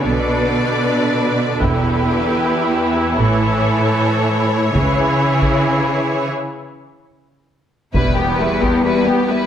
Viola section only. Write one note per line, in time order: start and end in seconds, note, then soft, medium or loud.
0.05 2.47 D3 soft
0.05 1.58 D4 soft
1.62 4.73 E4 soft
2.51 4.73 E3 soft
4.74 6.30 E3 soft
4.74 6.30 E4 soft
7.95 8.16 G3 soft
8.18 8.40 B3 soft
8.41 8.63 G3 soft
8.63 8.85 B3 soft
8.86 9.06 G3 soft
9.08 9.30 B3 soft
9.29 9.46 G3 soft